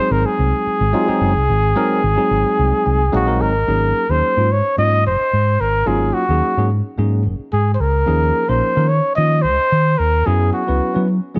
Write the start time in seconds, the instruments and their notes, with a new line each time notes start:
Already playing: trumpet C5
0.00 tine electric piano F#3 G#3 C4 D#4 G#4
0.11 fingered electric bass G#1, trumpet A#4
0.26 trumpet G#4
0.39 fingered electric bass C2
0.67 muted fingered electric bass stroke
0.81 fingered electric bass G#1
0.93 tine electric piano F#3 G#3 C4 D#4 F4
1.07 tine electric piano F#3 G#3 C4 D#4 G#4, muted fingered electric bass stroke
1.21 fingered electric bass F#1
1.35 fingered electric bass C2, tine electric piano D#4 G#4
1.50 fingered electric bass G#1
1.76 tine electric piano F#3 G#3 C4 D#4 A#4
2.03 fingered electric bass G#1, tine electric piano D#4
2.16 tine electric piano F#3 G#3 C4 D#4 G#4
2.31 fingered electric bass G#1
2.59 fingered electric bass C2
2.86 fingered electric bass C2, tine electric piano G#5
3.12 fingered electric bass A#1, tine electric piano F#3 G#3 C4 D#4 G#4 F5, trumpet F#4
3.27 tine electric piano F#3 G#3 C4 D#4 A#4
3.41 fingered electric bass G#1, trumpet A#4, tine electric piano D#5
3.54 tine electric piano D#4
3.67 fingered electric bass G#1, tine electric piano F#3 A#3 C#4 D#4 G#4
4.09 fingered electric bass D#2, tine electric piano F#3 A#3 C#4 D#4 G#4, trumpet C5
4.37 fingered electric bass G#2, tine electric piano F#3 A#3 C#4 D#4 F4
4.50 tine electric piano D#4 F#4, trumpet C#5
4.77 fingered electric bass G#2, tine electric piano F#3 A#3 C#4 D#4 F4, trumpet D#5
5.04 fingered electric bass F#1, tine electric piano D#4, trumpet C5
5.20 muted fingered electric bass stroke
5.33 fingered electric bass G#2
5.61 fingered electric bass G#1, trumpet A#4
5.86 fingered electric bass G#1, tine electric piano F#3 A#3 C#4 D#4 F4, trumpet G#4
6.14 trumpet F#4
6.29 fingered electric bass D#2, tine electric piano F#3 A#3 C#4 D#4 G#4
6.57 fingered electric bass G#2, tine electric piano F#3 A#3 C#4 D#4 G#4
6.70 tine electric piano D#4 F4
6.98 fingered electric bass G#2, tine electric piano F#3 A#3 C#4 D#4 G#4
7.25 fingered electric bass F#1, tine electric piano D#4 A#4
7.39 muted fingered electric bass stroke
7.53 fingered electric bass G#2, trumpet G#4
7.74 trumpet C5
7.80 fingered electric bass C#2, trumpet A#4
8.06 fingered electric bass D#2, tine electric piano F3 A#3 C#4 D#4 G#4
8.48 fingered electric bass A#1, tine electric piano F3 A#3 C#4 D#4 A#4, trumpet C5
8.75 fingered electric bass D#3, tine electric piano F3 A#3 C#4 D#4 A#4
8.88 tine electric piano D#4 G#4, trumpet C#5
9.15 fingered electric bass D#3, tine electric piano F3 A#3 C#4 D#4 F4, trumpet D#5
9.42 fingered electric bass C#2, tine electric piano D#4, trumpet C5
9.59 muted fingered electric bass stroke
9.72 fingered electric bass D#3
9.98 fingered electric bass D#2, trumpet A#4
10.26 fingered electric bass F#2, tine electric piano F#3 B3 C#4 E4 G#4, trumpet G#4
10.53 trumpet F#4
10.67 fingered electric bass C#2, tine electric piano F#3 B3 C#4 E4 B4
10.94 tine electric piano F#3 B3 C#4 E4 B4, fingered electric bass F#3
11.08 tine electric piano E4 G#4
11.34 tine electric piano F#3 B3 C#4 E4 G#4